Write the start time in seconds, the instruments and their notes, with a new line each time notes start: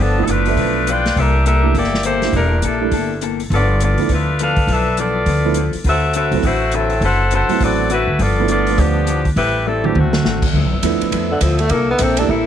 Already playing: upright bass G1
0.00 hollow-body jazz guitar G2 F3 B3 E4, saxophone section F3 B3 D4 A4
0.17 upright piano F3 A3 B3 D4 E4
0.23 saxophone section A4
0.27 upright bass F#1, hollow-body jazz guitar G2 F3 B3 E4, saxophone section A3 D4 F4 B4, closed hi-hat
0.45 upright piano F3 A3 B3 D4 E5, open hi-hat
0.57 upright bass B1, hollow-body jazz guitar G2 F3 B3 E4, kick, open hi-hat
0.87 hollow-body jazz guitar G2 F3 B3 E4, saxophone section F4 B4 D5 G5, closed hi-hat
1.06 snare, open hi-hat
1.15 upright bass C2, hollow-body jazz guitar C3 A#3 E4 A4, saxophone section D4 G4 A#4 E5, kick, open hi-hat
1.45 hollow-body jazz guitar C3 A#3 E4 A4, saxophone section D4 G4 A#4 E5, closed hi-hat
1.63 upright piano G3 A3 A#3 D4 E4
1.74 upright bass G1, hollow-body jazz guitar C3 A#3 E4 A4, saxophone section A#3 E4 G4 D5, kick, open hi-hat
1.84 snare
1.94 snare
2.03 hollow-body jazz guitar C3 A#3 E4 A4, saxophone section A#3 E4 G4 C5, closed hi-hat
2.21 upright piano G3 A3 A#3 D4 E4, snare, open hi-hat
2.33 upright bass E1, hollow-body jazz guitar C3 A#3 E4 A4, saxophone section G3 D4 E4 A#4, kick, open hi-hat
2.62 upright bass A#1, hollow-body jazz guitar C3 A#3 E4 A4, saxophone section G3 D4 E4 A4, closed hi-hat
2.80 upright piano G3 A3 A#3 D4 E4
2.91 upright bass G1, hollow-body jazz guitar C3 A#3 E4 A4, kick, open hi-hat
3.21 hollow-body jazz guitar C3 A#3 E4 A4, closed hi-hat
3.40 open hi-hat
3.50 upright bass G1, hollow-body jazz guitar G2 F3 B3 E4, saxophone section B3 F4 A4 D5, kick, open hi-hat
3.80 hollow-body jazz guitar G2 F3 B3 E4, saxophone section B3 F4 A4 D5, closed hi-hat
3.98 upright bass D2, upright piano F3 A3 B3 D4 E4, open hi-hat
4.09 upright bass D2, hollow-body jazz guitar G2 F3 B3, saxophone section D4 F4 B4, kick, open hi-hat
4.13 saxophone section A3, hollow-body jazz guitar E4
4.39 hollow-body jazz guitar G2 F3 B3 E4, saxophone section D4 A4 B4 F5, closed hi-hat
4.56 kick, open hi-hat
4.67 upright bass B1, hollow-body jazz guitar G2 F3 B3, saxophone section B4 E5, kick, open hi-hat
4.71 saxophone section D4 A4, hollow-body jazz guitar E4
4.97 hollow-body jazz guitar G2 F3 B3 E4, saxophone section B3 F4 A4 D5, closed hi-hat
5.26 upright bass D2, hollow-body jazz guitar G2 F3 B3 E4, kick, open hi-hat
5.45 upright piano F3 A3 B3 D4 E4
5.54 hollow-body jazz guitar G2 F3 B3 E4, closed hi-hat
5.73 muted upright bass stroke, open hi-hat
5.84 upright bass D2, hollow-body jazz guitar D3 C4 F#4 B4, saxophone section C4 F#4 A4 E5, kick, open hi-hat
6.13 hollow-body jazz guitar D3 C4 F#4 B4, saxophone section C4 F#4 A4 E5, closed hi-hat
6.31 upright bass C2, upright piano F#3 A3 B3 C4 E4, open hi-hat
6.43 upright bass A1, hollow-body jazz guitar D3 C4 F#4 B4, saxophone section A3 E4 F#4 C5, kick, open hi-hat
6.72 hollow-body jazz guitar D3 C4 F#4 B4, saxophone section F#3 C4 E4 A4, closed hi-hat
6.90 open hi-hat
7.01 upright bass F#1, hollow-body jazz guitar D3 C4 F#4 B4, saxophone section E4 A4 C5 F#5, kick, open hi-hat
7.31 hollow-body jazz guitar D3 C4 F#4 B4, saxophone section E4 A4 C5 F#5, closed hi-hat
7.49 upright piano F#3 A3 B3 C4 E4, muted upright bass stroke, open hi-hat
7.60 upright bass A1, hollow-body jazz guitar D3 C4 F#4 B4, saxophone section C4 F#4 A4 D5, kick, open hi-hat
7.90 hollow-body jazz guitar D3 C4 F#4 B4, saxophone section A3 E4 F#4 B4, closed hi-hat
8.07 upright bass D2
8.19 upright bass G1, hollow-body jazz guitar G2 F3 B3 E4, saxophone section B3 F4 A4 D5, kick, open hi-hat
8.39 upright piano F3 A3 B3 D4 E4
8.48 hollow-body jazz guitar G2 F3 B3 E4, saxophone section B3 F4 A4 D5, closed hi-hat
8.67 upright piano F3 A3 B3 D4 F4, open hi-hat
8.78 upright bass D2, hollow-body jazz guitar G2 F3 B3 E4, saxophone section F3 B3 D4 G4, kick, open hi-hat
9.07 hollow-body jazz guitar G2 F3 B3 E4, closed hi-hat
9.25 kick, open hi-hat
9.36 upright bass A1, hollow-body jazz guitar A2 G3 C4 E4, saxophone section A3 E4 G4 B4, kick, open hi-hat
9.66 hollow-body jazz guitar A2 G3 C4 E4, saxophone section G3 C4 E4 A4
9.84 saxophone section E3 A3 C4 G4, upright piano F#3 A3 C4 D4 E4, mid tom
9.95 upright bass D2, hollow-body jazz guitar D3 A3 C4 F#4, saxophone section D3 A3 C4 F#4, mid tom
10.13 snare
10.23 upright bass A1, hollow-body jazz guitar D3 A3 C4 F#4, snare
10.42 kick, crash
10.53 upright bass D2, hollow-body jazz guitar G2 F3 B3, saxophone section F3 B3 A4 E5, kick
10.58 hollow-body jazz guitar E4
10.64 upright bass B1
10.73 upright bass G1
10.82 upright bass E2, hollow-body jazz guitar G2 F3 B3 E4, upright piano F3 A3 B3 D4 E4, kick, hi-hat pedal, ride
11.01 muted upright bass stroke, ride
11.11 upright bass F2, hollow-body jazz guitar G2 F3 B3 E4, kick, ride
11.32 tenor saxophone D3
11.41 upright bass D2, hollow-body jazz guitar G2 F3 B3 E4, tenor saxophone F3, kick, hi-hat pedal, ride
11.59 tenor saxophone A3, ride
11.69 upright bass C2, hollow-body jazz guitar C3 A#3 E4 A4, tenor saxophone A#3, saxophone section D4 A#4, kick, ride
11.90 tenor saxophone B3
11.99 upright bass A#1, hollow-body jazz guitar C3 A#3 E4 A4, tenor saxophone C4, kick, hi-hat pedal, ride
12.17 upright piano G3 A3 A#3 D4 E4, tenor saxophone D4, ride
12.29 upright bass A1, hollow-body jazz guitar C3 A#3 E4 A4, tenor saxophone E4, kick